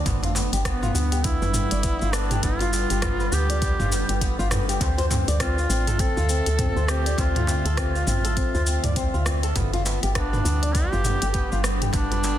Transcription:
Already playing: D4
0.05 G1 G3 B3 A4 B4, kick, closed hi-hat, mid tom, djembe slap, shaker
0.23 F4, closed hi-hat, djembe tone, djembe bass, shaker
0.35 B3, djembe slap, shaker
0.53 G1 G4, closed hi-hat, shaker
0.65 B3, kick, cross-stick, closed hi-hat, shaker
0.82 F4, mid tom, shaker
0.94 D2 B3, shaker
1.12 G4, closed hi-hat, shaker
1.24 B3 E4, kick, closed hi-hat, shaker
1.42 G1 B4, djembe tone, djembe bass, shaker
1.54 B3, mid tom, shaker
1.71 G1 D5, closed hi-hat, shaker
1.83 B3, kick, closed hi-hat, shaker
2.01 G1 F4, shaker
2.13 B3 D4, cross-stick, shaker
2.31 G4, closed hi-hat, mid tom, shaker
2.43 G1 B3 F4, kick, closed hi-hat, djembe slap, shaker
2.61 F4, closed hi-hat, djembe tone, shaker
2.73 B3, djembe slap, shaker
2.90 G1 G4, closed hi-hat, shaker
3.02 B3, kick, cross-stick, closed hi-hat, mid tom, shaker
3.20 B4, shaker
3.32 D2 B3 G4, shaker
3.50 D5, closed hi-hat, djembe tone, shaker
3.62 B3, kick, closed hi-hat, shaker
3.79 G1 F4, mid tom, djembe bass, shaker
3.92 B3, shaker
4.09 G1 G4, closed hi-hat, djembe tone, shaker
4.21 B3, kick, closed hi-hat, shaker
4.39 G1 F4, djembe slap, shaker
4.51 B3, cross-stick, mid tom, djembe tone, djembe bass, shaker
4.69 G4, closed hi-hat, shaker
4.81 D2 D3 A3 C4 F4 E5, kick, closed hi-hat, djembe slap, shaker
4.98 C5, closed hi-hat, djembe tone, djembe bass, shaker
5.10 C4, mid tom, djembe slap, shaker
5.28 D2 D5, closed hi-hat, shaker
5.40 C4 F4, kick, cross-stick, closed hi-hat, shaker
5.58 F4, shaker
5.69 A1 C4, shaker
5.87 A4, closed hi-hat, mid tom, shaker
5.99 C4 A4, kick, closed hi-hat, shaker
6.17 D2 F4, djembe tone, djembe bass, shaker
6.29 C4, shaker
6.46 D2 A4, closed hi-hat, shaker
6.59 C4, kick, closed hi-hat, mid tom, shaker
6.76 D2 C5, shaker
6.88 C4 G4, cross-stick, shaker
7.06 D5, closed hi-hat, shaker
7.18 D2 C4 F4, kick, closed hi-hat, djembe slap, shaker
7.35 F4, closed hi-hat, mid tom, djembe tone, shaker
7.47 C4, djembe slap, shaker
7.65 D2 A4, closed hi-hat, shaker
7.77 C4, kick, cross-stick, closed hi-hat, shaker
7.95 F4, shaker
8.07 A1 C4 F4, mid tom, shaker
8.25 A4, closed hi-hat, djembe tone, shaker
8.37 C4, kick, closed hi-hat, shaker
8.54 D2 C5, djembe bass, shaker
8.67 C4, shaker
8.84 D2 D5, closed hi-hat, mid tom, djembe tone, shaker
8.96 C4, kick, closed hi-hat, shaker
9.14 D2 F4, shaker
9.26 C4, cross-stick, djembe tone, shaker
9.43 A4, closed hi-hat, shaker
9.56 G1 G3 B3 D4 A4 B4, kick, closed hi-hat, mid tom, djembe slap, shaker
9.73 F4, closed hi-hat, djembe tone, djembe bass, shaker
9.85 B3, djembe slap, shaker
10.03 G1 G4, closed hi-hat, shaker
10.15 B3 D4, kick, cross-stick, closed hi-hat, shaker
10.33 B4, mid tom, shaker
10.45 D2 B3, shaker
10.63 D5, closed hi-hat, shaker
10.74 B3 G4, kick, closed hi-hat, shaker
10.92 G1 F4, djembe tone, djembe bass, shaker
11.04 B3, mid tom, shaker
11.22 G1 G4, closed hi-hat, shaker
11.34 B3, kick, closed hi-hat, shaker
11.52 G1 F4, shaker
11.64 B3, cross-stick, shaker
11.82 G4, closed hi-hat, mid tom, shaker
11.93 G1 B3 D4, kick, closed hi-hat, djembe slap, shaker
12.11 B4, closed hi-hat, djembe tone, djembe bass, shaker
12.23 B3, djembe slap, shaker

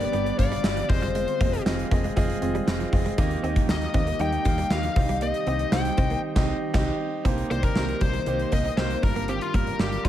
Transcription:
Already playing: G2 D3 G3 B3 D4 G4 B4 D5
0.01 A#3, closed hi-hat
0.12 G1 G3 B3 D4 G4 D5, closed hi-hat
0.26 muted clean electric guitar stroke, closed hi-hat
0.37 G1 B3 D4 G4 D5 F5, kick, closed hi-hat
0.52 G3, closed hi-hat
0.63 G1 B3 D4 G4 D5, snare, tambourine
0.77 F3, closed hi-hat
0.89 F1 D#3 G#3 C4 F4 G#4 C5 D#5, muted clean electric guitar stroke, kick, open hi-hat
1.02 G3, closed hi-hat
1.15 G#3, closed hi-hat
1.28 closed hi-hat
1.40 F1 A#3 C4 F4 G#4 D#5, kick, closed hi-hat
1.53 muted clean electric guitar stroke, closed hi-hat
1.65 F1 C4 F4 G#4 D#5, muted clean electric guitar stroke, snare, tambourine
1.79 closed hi-hat
1.91 F1 A#3 C4 F4 G#4 D#5, kick, closed hi-hat
2.04 G#3, closed hi-hat
2.16 F1 G3 C4 F4 G#4 D#5, kick, closed hi-hat
2.30 closed hi-hat
2.41 F1 C4 F4 G#4 D#5, muted clean electric guitar stroke, closed hi-hat
2.55 G3, closed hi-hat
2.67 F1 C4 F4 G#4 D#5, snare, tambourine
2.80 F3, closed hi-hat
2.92 F1 C4 F4 G#4 D#5, muted clean electric guitar stroke, kick, open hi-hat
3.06 G#3, closed hi-hat
3.18 D#2 D#3 G3 A#3 D#4 G4 D#5, kick, closed hi-hat
3.31 closed hi-hat
3.43 D#2 A#3 C4 D#4 G4 D#5, closed hi-hat
3.56 muted clean electric guitar stroke, kick, closed hi-hat
3.69 D#2 A#3 D#4 G4 D#5, muted clean electric guitar stroke, snare, tambourine
3.82 closed hi-hat
3.94 D#2 A#3 C4 D#4 G4 D#5, kick, closed hi-hat
4.07 A#3, closed hi-hat
4.19 D#2 G3 A#3 D#4 G4 D#5 G5, closed hi-hat
4.33 muted clean electric guitar stroke, closed hi-hat
4.45 D#2 A#3 D#4 G4 F5, kick, closed hi-hat
4.58 G3, closed hi-hat
4.70 D#2 A#3 D#4 G4 D#5 F5, snare, tambourine
4.83 F3, closed hi-hat
4.96 C2 C3 D#3 C4 D#4 G4 D#5, muted clean electric guitar stroke, kick, open hi-hat
5.09 G3, closed hi-hat
5.21 A#3 D#5, closed hi-hat
5.34 closed hi-hat
5.47 C2 C4 D#4 G4 D#5, closed hi-hat
5.59 muted clean electric guitar stroke, closed hi-hat
5.72 C2 C4 D#4 G4 C5 G5, muted clean electric guitar stroke, snare, tambourine
5.85 closed hi-hat
5.97 C2 C4 D#4 G4 D#5, kick, closed hi-hat
6.10 A#3, closed hi-hat
6.35 C2 C4 D#4 G4 D#5, kick, snare, crash
6.73 C2 C4 D#4 G4 D#5, kick, snare, crash
7.25 C2 C3 D#3 A#3 C4 D#4 G4 C5, kick, closed hi-hat
7.38 closed hi-hat
7.50 C2 A#3 D#4 G4 C5 D5, closed hi-hat
7.63 A#4, muted clean electric guitar stroke, kick, closed hi-hat
7.76 C2 A#3 D#4 G4 C5, muted clean electric guitar stroke, snare
7.89 closed hi-hat
8.01 C2 G3 A#3 D#4 G4 C5, kick, closed hi-hat
8.13 G3, closed hi-hat
8.26 C2 A#3 D#4 G4 C5, muted clean electric guitar stroke, closed hi-hat
8.39 closed hi-hat
8.52 C2 A#3 D#4 G4 C5 D#5, kick, closed hi-hat
8.65 D#4, closed hi-hat
8.77 C2 A#3 C4 D#4 G4 A#4 C5, snare
8.90 closed hi-hat
9.03 G1 G2 D3 G3 D4 F4 A#4, muted clean electric guitar stroke, kick, open hi-hat
9.16 A#3, closed hi-hat
9.28 C4 G4, closed hi-hat
9.41 F4, closed hi-hat
9.54 G1 G3 A#3 D4 F4 A#4, kick, closed hi-hat
9.67 muted clean electric guitar stroke, closed hi-hat
9.79 G1 G3 D4 F4 G4 A#4, muted clean electric guitar stroke, snare
9.92 closed hi-hat
10.05 G1 G3 D4 F4, kick, closed hi-hat

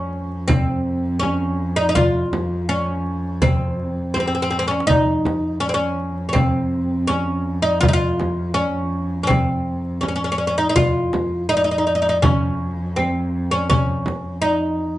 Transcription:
Already playing: F2 C#4
0.13 darbuka ka
0.32 darbuka ka
0.48 C4, frame drum, darbuka dum
1.06 darbuka ka
1.20 C#4, darbuka tek, frame drum
1.76 D#4
1.89 D#4
1.95 F4, frame drum, darbuka dum
2.33 darbuka tek, frame drum
2.69 C#4
3.06 darbuka ka
3.42 C4, frame drum, darbuka dum
3.80 darbuka ka
3.98 darbuka ka
4.14 C4, darbuka tek, frame drum
4.20 C4
4.26 C4, darbuka ka
4.35 C4, darbuka tek
4.42 C4, darbuka ka
4.51 C4, darbuka tek
4.59 C4, darbuka ka
4.68 C#4, darbuka tek
4.80 darbuka ka
4.87 F2 D#4, darbuka dum, frame drum
5.25 darbuka tek, frame drum
5.60 C#4
5.69 C4
5.74 C#4
6.00 darbuka ka
6.18 darbuka ka
6.29 C#4
6.33 C4, frame drum, darbuka dum
6.91 darbuka ka
7.07 C#4, darbuka tek, frame drum
7.62 D#4
7.81 F4, darbuka dum, frame drum
7.88 D#4
7.93 F4
8.20 darbuka tek, frame drum
8.54 C#4
8.93 darbuka ka
9.11 darbuka ka
9.23 C4 C#4
9.29 darbuka dum, frame drum
9.85 darbuka ka
10.01 C#4, darbuka tek, frame drum
10.08 C#4
10.16 C#4
10.24 C#4
10.32 C#4
10.38 C#4
10.47 C#4
10.58 D#4
10.69 D#4
10.76 F2 F4, darbuka dum, frame drum
11.13 darbuka tek, frame drum
11.49 D#4
11.57 D#4
11.64 D#4
11.71 D#4
11.78 D#4
11.87 D#4
11.95 D#4
12.02 D#4
12.09 D#4
12.22 C#4, darbuka dum, frame drum
12.96 C4, darbuka tek, frame drum
13.51 C#4
13.70 C#4, frame drum, darbuka dum
13.90 darbuka ka
14.06 darbuka tek, frame drum
14.42 D#4
14.63 darbuka ka

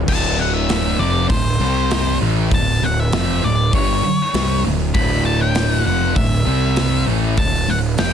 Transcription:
0.08 D1 D2 A2 D3 A5, kick, splash, crash
0.39 F#5
0.53 E5
0.69 snare, open hi-hat
0.99 F1 F2 C3 F3 D5
1.29 D1 D2 A2 C5, kick, open hi-hat
1.60 C2 C3 G3 C4
1.91 snare, open hi-hat
2.21 A1 A2 E3 A3
2.51 D1 D2 A2 A5, kick, open hi-hat
2.82 D1 D2 A2 F#5
3.00 E5
3.13 F1 F2 C3 F3, snare, open hi-hat
3.43 D1 D2 A2 D5
3.73 G1 G2 D3 G3 C#5, kick, open hi-hat
4.04 muted picked electric bass stroke, muted distorted electric guitar stroke
4.34 C2 C3 G3 C4, snare, open hi-hat
4.64 D1 D2 A2
4.94 D1 D2 A2 D3 B5, kick, open hi-hat
5.25 A5
5.41 G5
5.55 snare, open hi-hat
5.85 F1 F2 C3 F3 F#5
6.16 D1 D2 A2 E5, kick, open hi-hat
6.46 C2 C3 G3 C4
6.76 snare, open hi-hat
7.07 A1 A2 E3 A3
7.37 D1 D2 A2 A5, kick, open hi-hat
7.68 D1 D2 A2 F#5
7.97 F1 F2 C3 F3 G5, snare, open hi-hat

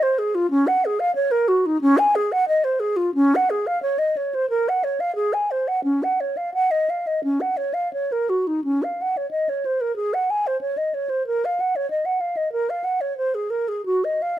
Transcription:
0.03 C5
0.19 G#4
0.35 F4
0.50 C#4
0.67 F#5
0.85 G#4
1.00 F5
1.15 C#5
1.31 A#4
1.48 F#4
1.66 D#4
1.81 C#4
1.98 G#5
2.15 G#4
2.32 F#5
2.48 D#5
2.64 C5
2.80 G#4
2.96 F4
3.14 C#4
3.35 F#5
3.50 G#4
3.67 F5
3.83 C#5
3.99 D#5
4.17 C#5
4.35 C5
4.50 A#4
4.69 F#5
4.84 C#5
5.00 F5
5.16 G#4
5.33 G#5
5.51 C5
5.68 F#5
5.84 C#4
6.03 F#5
6.20 C#5
6.37 F5
6.54 F#5
6.71 D#5
6.90 F5
7.07 D#5
7.24 C#4
7.41 F#5
7.57 C#5
7.74 F5
7.93 C#5
8.12 A#4
8.29 F#4
8.47 D#4
8.64 C#4
8.83 F5
9.02 F#5
9.17 C#5
9.31 D#5
9.49 C#5
9.66 C5
9.81 A#4
9.96 G#4
10.14 F#5
10.30 G#5
10.47 C5
10.61 C#5
10.77 D#5
10.94 C#5
11.10 C5
11.27 A#4
11.45 F5
11.60 F#5
11.76 C#5
11.90 D#5
12.05 F#5
12.21 F5
12.37 D#5
12.52 A#4
12.70 F5
12.84 F#5
13.01 C#5
13.18 C5
13.35 G#4
13.50 A#4
13.68 G#4
13.86 F#4
14.04 D#5
14.22 F5

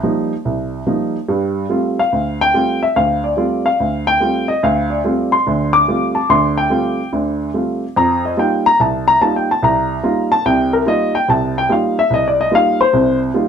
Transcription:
0.03 F3 G3 A#3 D#4
0.45 C2
0.87 F3 G3 A#3 D#4
1.28 G2 G3
1.70 G3 A3 C4 F4
1.99 F5
2.12 D2
2.41 G5
2.54 G3 A3 C4 F4
2.83 E5
2.96 D2 F5
3.24 D5
3.37 G3 A3 C4 F4
3.66 F5
3.80 D2
4.07 G5
4.20 G3 A3 C4 F4
4.48 D#5
4.63 D2 F5
4.90 D5
5.04 G3 A3 C4 F4
5.32 C6
5.47 D2 D3
5.73 D6
5.88 G3 A3 C4 F4
6.15 A5
6.29 D2 D3 C6
6.58 G5
6.70 G3 A3 C4 F4
7.13 D2 D3
7.54 G3 A3 C4 F4
7.96 F2 A#5
8.25 D#5
8.37 G3 A#3 D#4 F4 G5
8.66 A#5
8.80 C2 A5
9.08 A#5
9.21 G3 A#3 D#4 F4 A5
9.36 G5
9.51 A5
9.62 C2 A#5
10.03 G3 A#3 D#4 F4
10.32 A5
10.46 C2 C3 G5
10.73 A#4
10.86 G3 A#3 D#4 F4 D#5
11.15 G5
11.28 C2 C3 A5
11.58 G5
11.69 G3 A#3 D#4 F4 F5
11.99 E5
12.10 C2 D#5
12.28 D5
12.41 D#5
12.51 G3 A#3 D#4 F4 F5
12.81 C5
12.93 C2 C3
13.34 G3 A#3 D#4 F4

